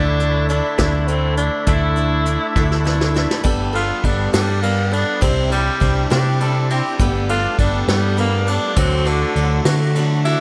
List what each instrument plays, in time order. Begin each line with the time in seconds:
Already playing: picked electric bass D2, steel-string acoustic guitar D3 A3 D4 E4, tenor saxophone D4, tonewheel organ D4 E4 A4
0.20 steel-string acoustic guitar A3 D4 E4, closed hi-hat
0.49 steel-string acoustic guitar D3 A3 D4 E4, tenor saxophone D4, closed hi-hat
0.78 picked electric bass D2, steel-string acoustic guitar D3 A3 D4 E4, tenor saxophone D4, kick, snare, closed hi-hat
1.08 steel-string acoustic guitar D3 A3 D4 E4, tenor saxophone C4, closed hi-hat
1.37 steel-string acoustic guitar A3 D4 E4, tenor saxophone D4, closed hi-hat
1.67 picked electric bass D2, steel-string acoustic guitar D3 A3 D4 E4, tenor saxophone E4, kick, closed hi-hat
1.96 steel-string acoustic guitar A3 D4 E4, closed hi-hat
2.26 steel-string acoustic guitar D3 A3 D4 E4, closed hi-hat
2.56 picked electric bass D2, steel-string acoustic guitar D3 A3 D4 E4, kick, snare
2.72 snare
2.84 steel-string acoustic guitar D3 A3 D4 E4, snare
3.01 snare
3.15 steel-string acoustic guitar A3 D4 E4, snare
3.31 snare
3.44 picked electric bass G1, steel-string acoustic guitar G3 B3 D4 A4, tonewheel organ B3 G4 A4, kick, crash
3.73 steel-string acoustic guitar B3 D4 A4, tenor saxophone F4, ride
4.04 picked electric bass G1, steel-string acoustic guitar G3 B3 D4 A4, tenor saxophone D4, kick, ride
4.32 picked electric bass G2, tenor saxophone G3, steel-string acoustic guitar G3 B3 D4 A4, snare, ride
4.62 steel-string acoustic guitar G3 B3 D4 A4, tenor saxophone A#3, ride
4.92 steel-string acoustic guitar B3 D4 A4, tenor saxophone D4, ride
5.21 picked electric bass C2, steel-string acoustic guitar C3 G3 C4 D4 E4, tonewheel organ C4 D4 E4, tenor saxophone C4, kick, ride
5.50 tenor saxophone G3, clean electric guitar G3, steel-string acoustic guitar C4 D4 E4, ride
5.80 picked electric bass C2, steel-string acoustic guitar G3 C4 D4 E4, kick, ride
6.10 steel-string acoustic guitar C3 G3 C4 D4 E4, picked electric bass C3, pedal steel guitar G4, snare, ride
6.40 steel-string acoustic guitar G3 C4 D4 E4, pedal steel guitar A4, ride
6.70 steel-string acoustic guitar C4 D4 E4, pedal steel guitar G4, ride
6.97 picked electric bass G1, steel-string acoustic guitar G3 B3 D4, tonewheel organ A3 B3 G4, kick, crash
7.02 steel-string acoustic guitar A4
7.29 steel-string acoustic guitar B3 D4 A4, tenor saxophone F4, ride
7.59 picked electric bass G1, steel-string acoustic guitar G3 B3 D4 A4, tenor saxophone D4, kick, ride
7.88 picked electric bass G2, tenor saxophone G3, steel-string acoustic guitar G3 B3 D4 A4, snare, ride
8.17 steel-string acoustic guitar G3 B3 D4 A4, tenor saxophone A#3, ride
8.47 steel-string acoustic guitar B3 D4 A4, tenor saxophone D4, ride
8.75 picked electric bass D2, steel-string acoustic guitar D3 F#3 A3 D4 F#4, tonewheel organ A3 D4 F#4, tenor saxophone C4, kick, ride
9.05 tenor saxophone D3, steel-string acoustic guitar A3 D4 F#4, ride
9.35 picked electric bass D2, clean electric guitar D3, steel-string acoustic guitar F#3 A3 D4 F#4, ride
9.65 picked electric bass D3, steel-string acoustic guitar D3 F#3 A3 D4 F#4, snare, ride
9.95 clean electric guitar D3, steel-string acoustic guitar F#3 A3 D4 F#4, ride
10.25 steel-string acoustic guitar A3 D4 F#4, tenor saxophone E4, ride